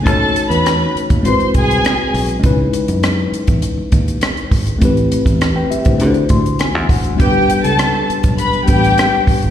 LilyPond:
<<
  \new Staff \with { instrumentName = "String section" } { \time 4/4 \key cis \minor \tempo 4 = 101 <a' a''>8. <b' b''>8. r8 <bis' bis''>8 <gis' gis''>4 r8 | r1 | r1 | <g' g''>8. <a' a''>8. r8 <b' b''>8 <g' g''>4 r8 | }
  \new Staff \with { instrumentName = "Tine electric piano" } { \time 4/4 \key cis \minor << { r1 | r1 | r4 r16 <b' g''>16 <g' e''>16 <e' c''>8 r16 c'''8 gis''8 fis''8 | r1 | } \\ { <a cis' dis' fis' cis''>2 <gis bis e' fis' b'>2 | <gis cis' dis' e' b'>1 | <a c' e' g' b'>2 <a d' e' fis' b' c''>2 | <g b d' g' b'>2~ <g b d' g' b'>8 <g b d' g' b'>4. | } >> }
  \new Staff \with { instrumentName = "Fingered electric bass" } { \clef bass \time 4/4 \key cis \minor dis,8 r16 e,8. r16 dis,16 gis,,16 r16 bis,,8 r8 b,,8 | cis,8 r16 fis,8. r16 e,16 r8 dis,8 r8 gis,,8 | a,,8 r16 e,8. r16 d,16 d8 d,8. e,16 e,,8 | g,,8 r16 cis,8. r16 b,,16 r8 a,,8 r8. g,,16 | }
  \new DrumStaff \with { instrumentName = "Drums" } \drummode { \time 4/4 <hh bd>8 hh16 hh16 <hh ss>8 hh16 <hh bd>16 hh16 hh16 <hh bd>16 hh16 <hh ss>8 hho16 hh16 | <hh bd>8 hh16 hh16 <hh ss>8 hh16 <hh bd>16 hh8 <hh bd>16 hh16 <hh ss>16 hh16 <hho bd>16 hh16 | <hh bd>16 hh16 hh16 <hh bd>16 <hh ss>8 hh16 <hh bd>16 hh16 hh16 <hh bd>16 hh16 <hh ss>8 <hho bd>16 hh16 | <hh bd>8 hh16 hh16 <hh ss>8 hh16 <hh bd>16 hh16 hh16 <hh bd>16 hh16 <hh ss>8 <hho bd>16 hh16 | }
>>